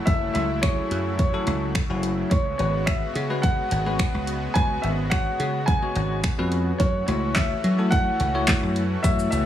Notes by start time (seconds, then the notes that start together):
Already playing: C#3 F#3 A3 E4
0.06 F#1 F#3 C#4 E4 A4 E5, kick, closed hi-hat
0.34 C#2 E5, closed hi-hat
0.62 F#3 C#4 E4 G#4 C#5, finger snap, kick, closed hi-hat
0.91 F#2, closed hi-hat
1.18 C#5, kick, closed hi-hat
1.34 F#3 C#4 E4 A4
1.47 C#2, closed hi-hat
1.75 finger snap, kick, closed hi-hat
1.90 F#1 F#3 C#4 E4 F#4
2.03 closed hi-hat
2.30 C#2 G#3 B3 F#4 C#5, kick, closed hi-hat
2.58 G#1 G#3 C#4 F#4 B4 C#5, closed hi-hat
2.86 E5, finger snap, kick, closed hi-hat
3.15 C#3, closed hi-hat
3.30 G#3 C#4 F#4 B4
3.42 F#5, kick, closed hi-hat
3.71 G#1, closed hi-hat
3.86 G#3 C#4 F#4 B4
3.99 finger snap, kick, closed hi-hat
4.14 C#2
4.27 closed hi-hat
4.54 C#2 G#3 C#4 F#4 B4 G#5, kick, closed hi-hat
4.82 G#1 E5, closed hi-hat
5.10 G#3 C#4 F#4 C#5 F#5, finger snap, kick, closed hi-hat
5.40 C#3, closed hi-hat
5.66 G#5, kick, closed hi-hat
5.82 G#3 C#4 F#4 C#5
5.96 G#1, closed hi-hat
6.24 finger snap, kick, closed hi-hat
6.38 F2 G#3 C#4 F#4 B4
6.52 closed hi-hat
6.78 F#2 E3 A3 C#4 F#4 C#5, kick, closed hi-hat
7.07 C#2 A3 E4 F#4 C#5, closed hi-hat
7.35 E5, kick, snare, clap, closed hi-hat
7.64 F#3, closed hi-hat
7.79 A3 E4 F#4 A4
7.91 F#5, kick, closed hi-hat
8.20 C#2, closed hi-hat
8.35 A3 E4 F#4 C#5
8.48 kick, snare, clap, closed hi-hat
8.63 F#2
8.76 closed hi-hat
9.03 F#2 A3 B3 E4 F#4 C#5 E5, kick, closed hi-hat, shaker
9.19 shaker
9.31 C#2 E5, closed hi-hat, shaker